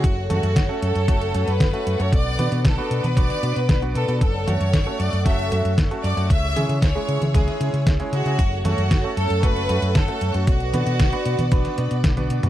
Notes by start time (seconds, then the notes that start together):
Already playing: F#4 C#6
0.04 F#1 A4 C#5 F#5, kick, closed hi-hat
0.30 F#2 A3 C#4 F#4 A4, closed hi-hat, high conga
0.43 F#2, closed hi-hat
0.56 F#1, kick, snare, closed hi-hat
0.69 A3 C#4 F#4 A4
0.82 F#2 A4, closed hi-hat
0.95 F#2, closed hi-hat
1.08 F#1 A3 C#4 F#4 A4, kick, closed hi-hat
1.22 closed hi-hat
1.34 F#2 A3 C#4 F#4 A4, closed hi-hat
1.48 F#2 B4, closed hi-hat
1.60 F#1, kick, snare, closed hi-hat
1.73 A3 C#4 F#4 A4, closed hi-hat
1.87 F#2, closed hi-hat
2.00 F#2 A3 C#4 F#4 A4 C#5, closed hi-hat
2.13 B1 B4 D5 D6, kick, closed hi-hat
2.39 B2 B3 D4 F#4 B4, closed hi-hat, high conga
2.52 B2, closed hi-hat
2.65 B1 A4, kick, snare, closed hi-hat
2.78 B3 D4 F#4 B4
2.91 B2, closed hi-hat
3.04 B2 B4, closed hi-hat, high conga
3.17 B1 B3 D4 F#4 B4 D5, kick, closed hi-hat
3.30 snare, closed hi-hat
3.43 B2 B3 D4 F#4 B4, closed hi-hat
3.56 B2 B4, closed hi-hat
3.69 B1 B4, kick, snare, closed hi-hat
3.82 B3 D4 F#4 B4, closed hi-hat
3.95 B2 A4, closed hi-hat
4.08 B2 B3 D4 F#4 B4, closed hi-hat
4.21 F#1 A4 C#5 F#5 C#6, kick, closed hi-hat
4.47 F#2 A3 C#4 F#4 A4 C#5, closed hi-hat, high conga
4.61 F#2, closed hi-hat
4.73 F#1, kick, snare, closed hi-hat
4.87 A3 C#4 F#4 A4
5.00 F#2 D5, closed hi-hat
5.13 F#2, closed hi-hat
5.26 F#1 A3 C#4 F#4 A4 E5, kick, closed hi-hat
5.39 closed hi-hat
5.52 F#2 A3 C#4 F#4 A4, closed hi-hat
5.65 F#2, closed hi-hat
5.78 F#1, kick, snare, closed hi-hat
5.91 A3 C#4 F#4 A4, closed hi-hat
6.04 F#2 D5, closed hi-hat
6.17 F#2 A3 C#4 F#4 A4, closed hi-hat
6.30 C#2 G#4 E5, kick, closed hi-hat
6.56 C#3 G#3 C#4 E4 G#4, closed hi-hat, high conga
6.69 C#3, closed hi-hat
6.82 C#2 C#5, kick, snare, closed hi-hat
6.95 G#3 C#4 E4 G#4
7.08 C#3, closed hi-hat
7.21 C#3, closed hi-hat, high conga
7.34 C#2 G#3 C#4 E4 G#4, kick, closed hi-hat
7.48 snare, closed hi-hat
7.60 C#3 G#3 C#4 E4 G#4, closed hi-hat
7.73 C#3, closed hi-hat
7.87 C#2, kick, snare, closed hi-hat
8.00 G#3 C#4 E4 G#4, closed hi-hat
8.13 C#3 F#4, closed hi-hat
8.25 C#3 G#3 C#4 E4 G#4, closed hi-hat
8.39 F#1 A4 F#5 C#6, kick, closed hi-hat
8.65 F#2 A3 C#4 F#4 A4, closed hi-hat, high conga
8.78 F#2, closed hi-hat
8.91 F#1, kick, snare, closed hi-hat
9.04 A3 C#4 F#4 A4
9.17 F#2 A4, closed hi-hat
9.30 F#2, closed hi-hat
9.43 F#1 A3 C#4 F#4 A4 B4, kick, closed hi-hat
9.56 closed hi-hat
9.69 F#2 A3 C#4 F#4 A4, closed hi-hat
9.82 F#2, closed hi-hat
9.95 F#1 A4, kick, snare, closed hi-hat
10.08 A3 C#4 F#4 A4, closed hi-hat
10.21 F#2, closed hi-hat
10.34 F#2 A3 C#4 F#4 A4, closed hi-hat
10.47 B1 F#4 B4 D5 D6, kick, closed hi-hat
10.60 closed hi-hat
10.73 B2 B3 D4 F#4 B4, closed hi-hat, high conga
10.86 B2, closed hi-hat
10.99 B1, kick, snare, closed hi-hat
11.13 B3 D4 F#4 B4, closed hi-hat
11.25 B2, closed hi-hat
11.39 B2, closed hi-hat, high conga
11.52 B1 B3 D4 F#4 B4, kick, closed hi-hat
11.65 snare, closed hi-hat
11.78 B2 B3 D4 F#4 B4, closed hi-hat
11.91 B2, closed hi-hat
12.04 B1, kick, snare, closed hi-hat, high tom
12.17 B3 D4 F#4 B4, closed hi-hat, high tom
12.30 B2, closed hi-hat
12.43 B2 B3 D4 F#4 B4, closed hi-hat, mid tom